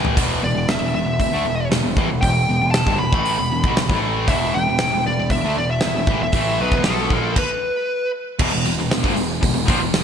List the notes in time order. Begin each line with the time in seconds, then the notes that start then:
Already playing: A1 A2 E3 A3
0.05 floor tom
0.16 E1 E2 B2 E3, kick, open hi-hat, splash
0.42 E1 E2 B2 D5
0.54 E1 E2 B2
0.68 E1 E2 B2 E5, snare, open hi-hat
0.81 E1 E2 B2
0.93 E1 E2 B2 E5
1.06 E1 E2 B2
1.19 E1 E2 B2, kick, open hi-hat
1.32 D2 D3 A3
1.45 E1 E2 B2
1.71 E1 E2 B2, snare, open hi-hat
1.83 E1 E2 B2
1.97 A1 A2 E3, kick
2.09 E1 E2 B2
2.21 E1 E2 B2 G5, kick, open hi-hat
2.48 E1 E2 B2
2.61 E1 E2 B2
2.71 A5, snare, open hi-hat
2.87 G1 G2 D3, kick
2.98 E1 E2 B2 B5
3.13 A1 A2 E3 A3, kick
3.25 open hi-hat
3.38 E1 E2 B2
3.52 E1 E2 B2
3.64 B1 B2 F#3, kick
3.77 E1 E2 B2, snare, open hi-hat
3.89 A1 A2 E3 A3, kick
4.28 E1 E2 B2 E3 E5, kick, open hi-hat
4.54 E1 E2 B2 G5
4.68 E1 E2 B2
4.78 E1, snare, open hi-hat
4.82 E2 B2
4.93 E1 E2 B2
5.06 E1 E2 B2 D5
5.19 E1 E2 B2
5.30 E1 E2 B2 E5, kick, open hi-hat
5.44 D2 D3 A3
5.57 E1 E2 B2 D5
5.71 E5
5.80 E1 E2 B2, snare, open hi-hat
5.96 E1 E2 B2
6.07 A1 A2 E3, kick
6.21 E1 E2 B2 E5
6.32 A1 A2 E3 A3, kick, open hi-hat
6.60 B1 B2 F#3 B4
6.72 E1 E2 B2, kick
6.84 B1 B2 A4, snare, open hi-hat
6.88 F#3 B3
7.10 A#1 A#2 F3 A#3, kick
7.36 B4, kick, crash
8.39 E1 E2 B2, kick, crash
8.53 E1 E2 B2
8.65 E1 E2 B2, open hi-hat
8.79 E1 E2 B2
8.91 E1 E2 B2, snare, open hi-hat
9.04 G1 G2 D3, kick
9.16 E1 E2 B2, open hi-hat
9.42 E1 E2 B2, kick, open hi-hat
9.56 E1 E2 B2
9.68 A#1 A#2 F3, kick, open hi-hat
9.82 E1 E2 B2
9.94 snare, open hi-hat